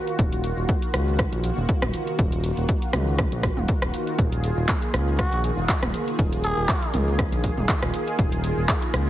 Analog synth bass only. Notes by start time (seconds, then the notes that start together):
0.19 D#1
0.57 D#1
0.94 C#2
1.32 A#1
1.57 D#1
1.82 D#1
2.19 D#1
2.57 D#1
2.94 C#2
3.32 A#1
3.57 D#1
3.82 D#1
4.19 D#1
4.57 D#1
4.94 C#2
5.32 A#1
5.57 D#1
5.82 D#1
6.19 D#1
6.57 D#1
6.94 C#2
7.32 A#1
7.57 D#1
7.82 D#1
8.19 D#1
8.57 D#1
8.94 C#2